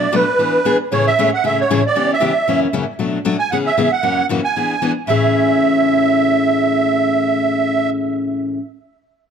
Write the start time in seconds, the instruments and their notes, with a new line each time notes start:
Already playing: accordion D5
0.12 steel-string acoustic guitar B2 F#3 A3 D4 F#4, accordion B4
0.39 steel-string acoustic guitar E3 B3 D4 G#4
0.65 steel-string acoustic guitar E3 B3 D4 G#4
0.92 steel-string acoustic guitar A2 C#3 E3 A3 C#4 G#4, accordion C#5
1.07 accordion E5
1.19 steel-string acoustic guitar A2 C#3 E3 A3 C#4 G#4
1.34 accordion F#5
1.44 steel-string acoustic guitar A2 C#3 E3 A3 C#4 G#4, accordion E5
1.61 accordion C#5
1.70 steel-string acoustic guitar A2 C#3 E3 A3 C#4 G#4
1.86 accordion D5
1.96 steel-string acoustic guitar C#3 E3 B3 C#4 G4
2.13 accordion E5
2.20 steel-string acoustic guitar C#3 E3 B3 C#4 G4
2.48 steel-string acoustic guitar F#2 C#3 E3 A#3 C#4 F#4
2.73 steel-string acoustic guitar F#2 C#3 E3 A#3 C#4 F#4
2.99 steel-string acoustic guitar B2 F#3 A3 D4 F#4
3.25 steel-string acoustic guitar B2 F#3 A3 D4 F#4
3.39 accordion G#5
3.51 steel-string acoustic guitar C#3 E3 B3 C#4 G#4, accordion F#5
3.66 accordion E5
3.78 steel-string acoustic guitar C#3 E3 B3 C#4 G#4
3.84 accordion E5
3.92 accordion F#5
4.03 steel-string acoustic guitar F#2 C#3 E3 A#3 C#4 F#4
4.29 steel-string acoustic guitar F#2 C#3 E3 A#3 C#4 F#4
4.44 accordion G#5
4.56 steel-string acoustic guitar E3 B3 D4 G#4
4.82 steel-string acoustic guitar E3 B3 D4 G#4
5.07 steel-string acoustic guitar A2 C#3 E3 A3 C#4 G#4, accordion E5